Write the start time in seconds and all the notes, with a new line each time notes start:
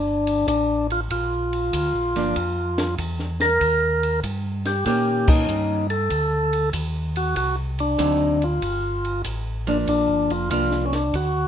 Already playing: G1 D4
0.27 ride
0.47 A1 D4, kick, hi-hat pedal, ride
0.90 F4, ride
1.10 A#1 F4, kick, ride
1.53 ride
1.73 D2, kick, hi-hat pedal, ride
1.94 A#1
2.15 G1 F3 A#3 D4, ride
2.36 F2, kick, ride
2.78 snare, ride
2.98 E2, kick, hi-hat pedal, ride
3.19 snare
3.40 A#4, snare, ride
3.61 D#2, kick, ride
4.03 ride
4.23 G2, kick, hi-hat pedal, ride
4.65 G4, snare, ride
4.86 A#2 D#3 A#3 C#4 G4, kick, ride
5.27 D#4, kick, crash
5.48 G2, hi-hat pedal
5.90 A4, ride
6.10 D2, kick, ride
6.53 ride
6.73 D#2, kick, hi-hat pedal, ride
7.16 F#4, ride
7.36 C2 F#4, kick, ride
7.79 D4, ride
7.98 D2 D3 F#3 C4 D#4, kick, hi-hat pedal, ride
8.42 F4, ride
8.62 G1, kick, ride
9.05 ride
9.24 A1, kick, hi-hat pedal, ride
9.67 F3 A#3 D4, ride
9.87 A#1 D4, kick, ride
10.08 G1
10.29 F1 F4, ride
10.50 C2 F3 A#3 D4 F4, kick, hi-hat pedal, ride
10.71 snare
10.86 C#4
10.93 D4, snare, ride
11.13 D2 F#4, kick, ride